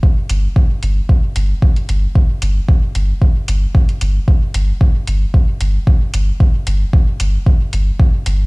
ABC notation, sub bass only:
X:1
M:4/4
L:1/8
Q:"Swing 16ths" 1/4=113
K:Cdor
V:1 name="Sub bass" clef=bass
z G,,, z G,,, z G,,, z G,,, | z G,,, z G,,, z G,,, z G,,, | z G,,, z G,,, z G,,, z G,,, | z G,,, z G,,, z G,,, z G,,, |]